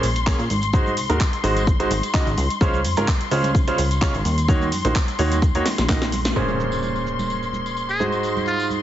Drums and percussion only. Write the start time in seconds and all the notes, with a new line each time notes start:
0.03 open hi-hat, high conga, shaker
0.15 closed hi-hat, tambourine, shaker
0.27 kick, clap, tambourine, shaker
0.39 closed hi-hat, tambourine, shaker
0.50 open hi-hat, high conga, shaker
0.62 closed hi-hat, tambourine, shaker
0.73 kick, tambourine, shaker
0.86 tambourine, high conga, shaker
0.97 open hi-hat, shaker
1.09 closed hi-hat, tambourine, shaker
1.20 kick, clap, tambourine, high conga, shaker
1.33 closed hi-hat, tambourine, shaker
1.44 open hi-hat, shaker
1.56 closed hi-hat, tambourine, high conga, shaker
1.67 kick, shaker
1.80 closed hi-hat, tambourine, shaker
1.90 open hi-hat, high conga, shaker
2.03 closed hi-hat, tambourine, shaker
2.14 kick, clap, shaker
2.27 closed hi-hat, tambourine, shaker
2.37 open hi-hat, high conga, shaker
2.50 closed hi-hat, tambourine, shaker
2.60 kick, tambourine, shaker
2.73 tambourine, high conga, shaker
2.85 open hi-hat, shaker
2.97 closed hi-hat, tambourine, shaker
3.07 kick, clap, tambourine, high conga, shaker
3.21 closed hi-hat, tambourine, shaker
3.31 open hi-hat, shaker
3.43 closed hi-hat, tambourine, high conga, shaker
3.55 kick, tambourine, shaker
3.67 closed hi-hat, tambourine, shaker
3.78 open hi-hat, high conga, shaker
3.91 closed hi-hat, tambourine, shaker
4.02 kick, clap, shaker
4.14 closed hi-hat, tambourine, shaker
4.25 open hi-hat, high conga, shaker
4.38 closed hi-hat, tambourine, shaker
4.48 kick, tambourine, shaker
4.61 tambourine, high conga, shaker
4.72 open hi-hat, shaker
4.85 closed hi-hat, tambourine, shaker
4.95 kick, clap, tambourine, high conga, shaker
5.08 closed hi-hat, tambourine, shaker
5.19 open hi-hat, shaker
5.31 closed hi-hat, tambourine, high conga, shaker
5.42 kick, tambourine, shaker
5.55 closed hi-hat, tambourine, shaker
5.65 snare, open hi-hat, high conga, shaker
5.78 snare, closed hi-hat, tambourine, shaker
5.89 kick, snare, clap, tambourine, shaker
6.02 snare, closed hi-hat, tambourine, shaker
6.12 open hi-hat, high conga, shaker
6.25 snare, closed hi-hat, tambourine, shaker
6.36 tambourine, shaker
6.48 tambourine, high conga, shaker
6.60 shaker
6.72 tambourine, shaker
6.82 tambourine, high conga, shaker
6.95 tambourine, shaker
7.07 shaker
7.19 tambourine, high conga, shaker
7.30 tambourine, shaker
7.43 tambourine, shaker
7.53 high conga, shaker
7.66 tambourine, shaker
7.77 tambourine, shaker
7.89 tambourine, shaker
8.00 high conga, shaker
8.12 tambourine, shaker
8.23 tambourine, shaker
8.37 tambourine, high conga, shaker
8.48 shaker
8.60 tambourine, shaker
8.70 tambourine, high conga, shaker